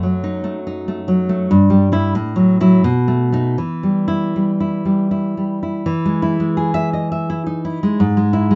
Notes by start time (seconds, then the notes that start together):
Already playing: F#2 A3
0.03 F#3
0.24 D#4
0.44 A3
0.67 D#4
0.88 A3
1.08 F#3
1.29 A3
1.51 G2
1.70 G3
1.92 G3 E4
2.15 A2
2.36 F#3
2.60 F#3 E4
2.84 B2
3.08 A3
3.32 A3 D#4
3.58 E3
3.83 G3
4.08 E4
4.36 G3
4.60 E4
4.85 G3
5.11 E4
5.37 G3
5.63 E4
5.86 E3
6.05 G#3
6.22 E4
6.40 G#3
6.57 G#4
6.74 E5
6.93 D#5
7.12 E5
7.30 E4
7.46 D#4
7.65 E4
7.83 G#3
8.00 G#2
8.17 G#3
8.33 E4
8.51 G#3